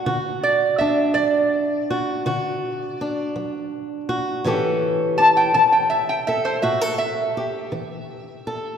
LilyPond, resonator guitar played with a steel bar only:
\new Staff \with { instrumentName = "Resonator guitar played with a steel bar" } { \time 12/8 \key a \mixolydian \tempo 4. = 55 fis''8 d''8 e''8 d''2. r4. | r4 a''16 g''16 a''16 g''16 e''16 g''16 e''16 c''16 e''8 e''2~ e''8 | }